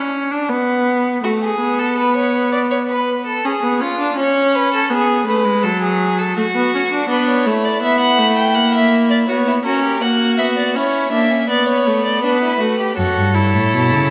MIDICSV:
0, 0, Header, 1, 5, 480
1, 0, Start_track
1, 0, Key_signature, 2, "minor"
1, 0, Tempo, 731707
1, 813, Time_signature, 4, 2, 24, 8
1, 6092, Tempo, 740741
1, 9212, End_track
2, 0, Start_track
2, 0, Title_t, "Violin"
2, 0, Program_c, 0, 40
2, 4662, Note_on_c, 0, 71, 82
2, 4768, Note_off_c, 0, 71, 0
2, 4776, Note_on_c, 0, 73, 84
2, 5016, Note_on_c, 0, 74, 78
2, 5026, Note_off_c, 0, 73, 0
2, 5131, Note_off_c, 0, 74, 0
2, 5135, Note_on_c, 0, 76, 87
2, 5245, Note_off_c, 0, 76, 0
2, 5249, Note_on_c, 0, 78, 82
2, 5484, Note_off_c, 0, 78, 0
2, 5497, Note_on_c, 0, 79, 79
2, 5605, Note_on_c, 0, 78, 92
2, 5615, Note_off_c, 0, 79, 0
2, 5728, Note_off_c, 0, 78, 0
2, 5736, Note_on_c, 0, 76, 85
2, 5969, Note_off_c, 0, 76, 0
2, 5973, Note_on_c, 0, 74, 80
2, 6020, Note_off_c, 0, 74, 0
2, 6085, Note_on_c, 0, 73, 80
2, 6321, Note_off_c, 0, 73, 0
2, 6327, Note_on_c, 0, 70, 84
2, 6564, Note_on_c, 0, 78, 84
2, 6574, Note_off_c, 0, 70, 0
2, 6797, Note_off_c, 0, 78, 0
2, 6801, Note_on_c, 0, 76, 76
2, 6850, Note_off_c, 0, 76, 0
2, 6923, Note_on_c, 0, 74, 78
2, 7042, Note_off_c, 0, 74, 0
2, 7046, Note_on_c, 0, 73, 80
2, 7278, Note_off_c, 0, 73, 0
2, 7281, Note_on_c, 0, 76, 81
2, 7518, Note_off_c, 0, 76, 0
2, 7525, Note_on_c, 0, 74, 86
2, 7642, Note_off_c, 0, 74, 0
2, 7645, Note_on_c, 0, 73, 80
2, 7878, Note_off_c, 0, 73, 0
2, 7881, Note_on_c, 0, 74, 73
2, 7999, Note_off_c, 0, 74, 0
2, 8003, Note_on_c, 0, 71, 78
2, 8478, Note_off_c, 0, 71, 0
2, 8481, Note_on_c, 0, 73, 68
2, 9212, Note_off_c, 0, 73, 0
2, 9212, End_track
3, 0, Start_track
3, 0, Title_t, "Violin"
3, 0, Program_c, 1, 40
3, 811, Note_on_c, 1, 66, 75
3, 860, Note_off_c, 1, 66, 0
3, 927, Note_on_c, 1, 68, 69
3, 1174, Note_on_c, 1, 69, 74
3, 1184, Note_off_c, 1, 68, 0
3, 1290, Note_off_c, 1, 69, 0
3, 1294, Note_on_c, 1, 71, 82
3, 1413, Note_off_c, 1, 71, 0
3, 1417, Note_on_c, 1, 73, 73
3, 1650, Note_off_c, 1, 73, 0
3, 1654, Note_on_c, 1, 74, 73
3, 1704, Note_off_c, 1, 74, 0
3, 1775, Note_on_c, 1, 73, 79
3, 1825, Note_off_c, 1, 73, 0
3, 1895, Note_on_c, 1, 71, 78
3, 2131, Note_off_c, 1, 71, 0
3, 2135, Note_on_c, 1, 69, 75
3, 2262, Note_on_c, 1, 68, 81
3, 2272, Note_off_c, 1, 69, 0
3, 2501, Note_off_c, 1, 68, 0
3, 2505, Note_on_c, 1, 65, 77
3, 2739, Note_off_c, 1, 65, 0
3, 2745, Note_on_c, 1, 73, 86
3, 2983, Note_on_c, 1, 71, 78
3, 2993, Note_off_c, 1, 73, 0
3, 3100, Note_off_c, 1, 71, 0
3, 3104, Note_on_c, 1, 69, 77
3, 3220, Note_off_c, 1, 69, 0
3, 3223, Note_on_c, 1, 68, 88
3, 3454, Note_off_c, 1, 68, 0
3, 3458, Note_on_c, 1, 71, 83
3, 3692, Note_on_c, 1, 69, 89
3, 3702, Note_off_c, 1, 71, 0
3, 3813, Note_off_c, 1, 69, 0
3, 3817, Note_on_c, 1, 68, 81
3, 4055, Note_on_c, 1, 69, 78
3, 4065, Note_off_c, 1, 68, 0
3, 4170, Note_off_c, 1, 69, 0
3, 4174, Note_on_c, 1, 66, 89
3, 4642, Note_off_c, 1, 66, 0
3, 4646, Note_on_c, 1, 62, 69
3, 4892, Note_on_c, 1, 64, 74
3, 4902, Note_off_c, 1, 62, 0
3, 6086, Note_off_c, 1, 64, 0
3, 6090, Note_on_c, 1, 66, 65
3, 6138, Note_off_c, 1, 66, 0
3, 6210, Note_on_c, 1, 64, 68
3, 6258, Note_off_c, 1, 64, 0
3, 6330, Note_on_c, 1, 66, 66
3, 6446, Note_off_c, 1, 66, 0
3, 6449, Note_on_c, 1, 67, 65
3, 6566, Note_on_c, 1, 66, 73
3, 6576, Note_off_c, 1, 67, 0
3, 7046, Note_on_c, 1, 64, 69
3, 7056, Note_off_c, 1, 66, 0
3, 7274, Note_off_c, 1, 64, 0
3, 7278, Note_on_c, 1, 62, 62
3, 7399, Note_on_c, 1, 61, 58
3, 7409, Note_off_c, 1, 62, 0
3, 7515, Note_off_c, 1, 61, 0
3, 7519, Note_on_c, 1, 59, 72
3, 8002, Note_on_c, 1, 62, 65
3, 8012, Note_off_c, 1, 59, 0
3, 8115, Note_off_c, 1, 62, 0
3, 8119, Note_on_c, 1, 64, 62
3, 8238, Note_on_c, 1, 66, 62
3, 8248, Note_off_c, 1, 64, 0
3, 8354, Note_off_c, 1, 66, 0
3, 8358, Note_on_c, 1, 67, 64
3, 8478, Note_off_c, 1, 67, 0
3, 8482, Note_on_c, 1, 69, 71
3, 9212, Note_off_c, 1, 69, 0
3, 9212, End_track
4, 0, Start_track
4, 0, Title_t, "Viola"
4, 0, Program_c, 2, 41
4, 0, Note_on_c, 2, 61, 68
4, 204, Note_on_c, 2, 62, 68
4, 214, Note_off_c, 2, 61, 0
4, 323, Note_on_c, 2, 59, 81
4, 333, Note_off_c, 2, 62, 0
4, 803, Note_off_c, 2, 59, 0
4, 807, Note_on_c, 2, 57, 68
4, 1047, Note_off_c, 2, 57, 0
4, 1053, Note_on_c, 2, 59, 73
4, 2239, Note_off_c, 2, 59, 0
4, 2260, Note_on_c, 2, 61, 69
4, 2309, Note_off_c, 2, 61, 0
4, 2379, Note_on_c, 2, 59, 64
4, 2496, Note_on_c, 2, 61, 60
4, 2506, Note_off_c, 2, 59, 0
4, 2607, Note_off_c, 2, 61, 0
4, 2611, Note_on_c, 2, 62, 65
4, 2728, Note_off_c, 2, 62, 0
4, 2732, Note_on_c, 2, 61, 77
4, 3213, Note_on_c, 2, 59, 69
4, 3222, Note_off_c, 2, 61, 0
4, 3449, Note_off_c, 2, 59, 0
4, 3453, Note_on_c, 2, 57, 70
4, 3573, Note_on_c, 2, 56, 64
4, 3582, Note_off_c, 2, 57, 0
4, 3696, Note_on_c, 2, 54, 75
4, 3706, Note_off_c, 2, 56, 0
4, 4172, Note_off_c, 2, 54, 0
4, 4176, Note_on_c, 2, 57, 71
4, 4224, Note_off_c, 2, 57, 0
4, 4297, Note_on_c, 2, 59, 68
4, 4413, Note_off_c, 2, 59, 0
4, 4424, Note_on_c, 2, 61, 61
4, 4470, Note_off_c, 2, 61, 0
4, 4535, Note_on_c, 2, 62, 70
4, 4647, Note_off_c, 2, 62, 0
4, 4651, Note_on_c, 2, 59, 74
4, 4893, Note_on_c, 2, 57, 69
4, 4903, Note_off_c, 2, 59, 0
4, 5128, Note_off_c, 2, 57, 0
4, 5132, Note_on_c, 2, 59, 69
4, 5369, Note_on_c, 2, 57, 72
4, 5379, Note_off_c, 2, 59, 0
4, 5614, Note_on_c, 2, 58, 72
4, 5623, Note_off_c, 2, 57, 0
4, 6094, Note_off_c, 2, 58, 0
4, 6097, Note_on_c, 2, 59, 73
4, 6327, Note_off_c, 2, 59, 0
4, 6332, Note_on_c, 2, 61, 68
4, 6564, Note_off_c, 2, 61, 0
4, 6570, Note_on_c, 2, 58, 72
4, 6805, Note_on_c, 2, 59, 65
4, 6815, Note_off_c, 2, 58, 0
4, 7041, Note_on_c, 2, 61, 65
4, 7051, Note_off_c, 2, 59, 0
4, 7277, Note_off_c, 2, 61, 0
4, 7281, Note_on_c, 2, 58, 66
4, 7518, Note_off_c, 2, 58, 0
4, 7521, Note_on_c, 2, 59, 70
4, 7762, Note_on_c, 2, 57, 66
4, 7772, Note_off_c, 2, 59, 0
4, 8001, Note_off_c, 2, 57, 0
4, 8005, Note_on_c, 2, 59, 69
4, 8233, Note_off_c, 2, 59, 0
4, 8236, Note_on_c, 2, 57, 57
4, 8474, Note_off_c, 2, 57, 0
4, 8478, Note_on_c, 2, 66, 70
4, 8721, Note_on_c, 2, 64, 65
4, 8731, Note_off_c, 2, 66, 0
4, 9212, Note_off_c, 2, 64, 0
4, 9212, End_track
5, 0, Start_track
5, 0, Title_t, "Cello"
5, 0, Program_c, 3, 42
5, 8483, Note_on_c, 3, 42, 69
5, 8533, Note_off_c, 3, 42, 0
5, 8610, Note_on_c, 3, 43, 66
5, 8848, Note_on_c, 3, 45, 62
5, 8858, Note_off_c, 3, 43, 0
5, 8973, Note_on_c, 3, 47, 67
5, 8982, Note_off_c, 3, 45, 0
5, 9093, Note_on_c, 3, 49, 70
5, 9103, Note_off_c, 3, 47, 0
5, 9212, Note_off_c, 3, 49, 0
5, 9212, End_track
0, 0, End_of_file